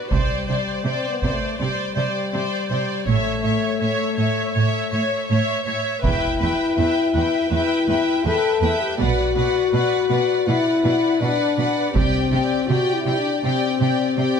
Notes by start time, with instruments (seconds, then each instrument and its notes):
Already playing: viola section F#4, violin section B4
0.11 double bass section C2, cello section C3, french horn section G3, viola section C5, violin section D5, taiko
0.48 cello section C3, viola section C5, violin section D5
0.85 cello section C3, french horn section C4, viola section C5, violin section D5
1.09 french horn section B3
1.22 cello section C3, viola section C5, violin section D5, taiko
1.33 french horn section A3
1.58 cello section C3, french horn section G3, viola section C5, violin section D5
1.96 cello section C3, viola section C5, violin section D5
2.32 cello section C3, viola section C5, violin section D5
2.70 cello section C3, viola section C5, violin section D5
3.07 double bass section A1, cello section A2, french horn section A3, violin section C#5 E5, viola section C#5
3.44 cello section A2, viola section C#5, violin section C#5 E5
3.81 cello section A2, viola section C#5, violin section C#5 E5
4.17 cello section A2, viola section C#5, violin section C#5 E5
4.54 cello section A2, viola section C#5, violin section C#5 E5
4.92 cello section A2, viola section C#5, violin section C#5 E5
5.28 cello section A2, viola section C#5, violin section C#5 E5
5.66 cello section A2, viola section C#5, violin section C#5 E5
6.03 double bass section E1, cello section E2, french horn section E4, viola section B4, violin section E5 G5, taiko
6.40 cello section E2, viola section B4, violin section E5 G5
6.77 cello section E2, viola section B4, violin section E5 G5
7.14 cello section E2, viola section B4, violin section E5 G5
7.50 cello section E2, french horn section E4, viola section B4, violin section E5 G5
7.87 cello section E2, viola section B4, violin section E5 G5
8.25 cello section E2, french horn section A4, viola section B4, violin section E5 G5
8.62 cello section E2, viola section B4, violin section E5 G5
8.81 french horn section G4
8.98 double bass section B1, cello section B2, french horn section F#4, viola section B4, violin section D5 F#5
9.36 cello section B2, viola section B4, violin section D5 F#5
9.72 cello section B2, viola section B4, violin section D5 F#5
10.10 cello section B2, viola section B4, violin section D5 F#5
10.47 cello section B2, french horn section E4, viola section B4, violin section D5 F#5
10.84 cello section B2, viola section B4, violin section D5 F#5
11.21 cello section B2, french horn section D4, viola section B4, violin section D5 F#5
11.58 cello section B2, viola section B4, violin section D5 F#5
11.93 double bass section C2, cello section C3, french horn section C4, viola section G4, violin section D5 G5, taiko
12.30 cello section C3, viola section G4, violin section D5 G5
12.68 cello section C3, french horn section F#4, viola section G4, violin section D5 G5
12.94 french horn section E4
13.06 cello section C3, viola section G4, violin section D5 G5
13.19 french horn section D4
13.43 cello section C3, french horn section C4, viola section G4, violin section D5 G5
13.80 cello section C3, viola section G4, violin section D5 G5
14.17 cello section C3, viola section G4, violin section D5 G5